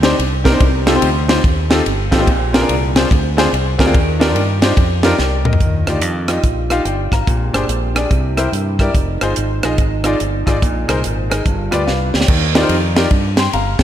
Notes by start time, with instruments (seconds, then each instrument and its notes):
Already playing: fingered electric bass D2
0.02 grand piano C4 D4 D#4 G4 C5, snare, ride
0.19 fingered electric bass C2, ride
0.44 grand piano C4 D4 D#4 G4 A#4, kick, snare, ride
0.52 grand piano C4 D4 D#4 G4 C5
0.60 fingered electric bass C2, grand piano C3, kick, ride
0.86 grand piano C4 D#4 F4 G4 A4, snare, ride
0.94 grand piano C4 D#4 F4 G4 C5
1.02 fingered electric bass D2, ride
1.28 grand piano C4 D#4 F4 G4 C5, snare, ride
1.44 fingered electric bass D#2, kick, ride
1.70 grand piano C4 D#4 F4 G4 A4, snare, ride
1.86 fingered electric bass G1, ride
2.11 fingered electric bass A1, grand piano C4 D#4 F4 G4 A4, kick, snare, ride
2.19 grand piano C4 D#4 F4 G4 C5
2.27 fingered electric bass A#1, grand piano A#2, kick, ride
2.53 grand piano C4 D4 F4 G#4 A#4, snare, ride
2.61 grand piano C4 D4 F4 G#4 A#4
2.69 fingered electric bass C2, ride
2.96 grand piano C4 D4 F4 G#4 C5, snare, ride
3.11 fingered electric bass D2, kick, ride
3.37 grand piano C4 D4 F4 G#4 C5, snare, ride
3.53 fingered electric bass C2, ride
3.78 fingered electric bass D2, grand piano C4 D4 F4 G#4 A#4, kick, snare, ride
3.86 grand piano C4 D4 F4 G#4 A#4
3.93 fingered electric bass D#2, grand piano D#3, kick, ride
4.19 grand piano D4 D#4 F4 G4 A#4, snare, ride
4.28 grand piano D4 D#4 F4 G4 A#4
4.36 fingered electric bass G2, ride
4.62 grand piano D4 D#4 F4 G4 C5, snare, ride
4.77 fingered electric bass F2, kick, ride
5.03 grand piano D4 D#4 F4 G4 A#4, snare, ride
5.19 fingered electric bass C2, grand piano D5 G5, snare
5.45 fingered electric bass D2, grand piano A#4 D#5, mid tom
5.53 floor tom
5.60 fingered electric bass D#2, grand piano D#3, french horn section G3 D4 D#4 F4, kick, closed hi-hat
5.86 fingered electric bass D2, grand piano D#4 F4 G4 D5, cross-stick, closed hi-hat
6.02 fingered electric bass F2, closed hi-hat
6.28 grand piano D#4 F4 G4 D#5, cross-stick, closed hi-hat
6.44 fingered electric bass A#1, kick, closed hi-hat
6.70 grand piano D#4 F4 G4 F5, cross-stick, closed hi-hat
6.85 fingered electric bass G1, grand piano D5 G5, closed hi-hat
7.12 fingered electric bass G#1, grand piano F5 A#5, kick, cross-stick, closed hi-hat
7.25 fingered electric bass A#1, grand piano A#2, french horn section G#3 C4 G4, kick, closed hi-hat
7.53 fingered electric bass G1, grand piano D4 G4 G#4 C5, cross-stick, closed hi-hat
7.68 fingered electric bass A#1, closed hi-hat
7.95 grand piano D4 G4 G#4 D5, cross-stick, closed hi-hat
8.10 fingered electric bass C2, grand piano C3, french horn section G3 A#3 E4, kick, closed hi-hat
8.37 grand piano E4 G4 A#4 C5, cross-stick, closed hi-hat
8.52 fingered electric bass G2, closed hi-hat
8.79 grand piano E4 G4 A#4 D5, kick, cross-stick, closed hi-hat
8.93 fingered electric bass F1, french horn section F3 G#3 C4 D#4, kick, closed hi-hat
9.21 fingered electric bass G1, grand piano D#4 F4 G#4 C5, cross-stick, closed hi-hat
9.36 fingered electric bass G#1, closed hi-hat
9.63 fingered electric bass A#1, grand piano D#4 F4 G#4 D#5, cross-stick, closed hi-hat
9.78 fingered electric bass G#1, kick, closed hi-hat
10.04 grand piano D#4 F4 G#4 D5, cross-stick, closed hi-hat
10.20 fingered electric bass G1, closed hi-hat
10.46 fingered electric bass G#1, grand piano D#4 F4 G#4 D5, kick, cross-stick, closed hi-hat
10.62 fingered electric bass A#1, grand piano A#2, french horn section A#3 C4, kick, closed hi-hat
10.88 fingered electric bass C2, grand piano D#4 G#4 A#4 C5, cross-stick, closed hi-hat
11.04 fingered electric bass G#1, closed hi-hat
11.30 grand piano D#4 G#4 A#4 D#5, cross-stick, closed hi-hat
11.46 fingered electric bass G1, grand piano G2, french horn section G3 B3 D4 F4, kick, closed hi-hat
11.71 fingered electric bass D2, grand piano F4 G4 B4 D5, cross-stick, closed hi-hat
11.87 fingered electric bass C2, grand piano B4 F5, snare
12.14 fingered electric bass D2, grand piano D5 G5, snare
12.21 snare
12.28 fingered electric bass D#2, grand piano D#3, kick, crash
12.55 grand piano D#4 F4 G4 A#4 D5, snare, ride
12.62 grand piano D#4 F4 G4 A#4 C5
12.69 fingered electric bass F2, ride
12.95 grand piano D#4 F4 G4 A#4 D5, snare, ride
13.11 fingered electric bass G2, kick, ride
13.37 grand piano G5 C6, snare, ride
13.53 fingered electric bass G1, grand piano F5 A#5, ride
13.79 fingered electric bass G#1, kick, snare, ride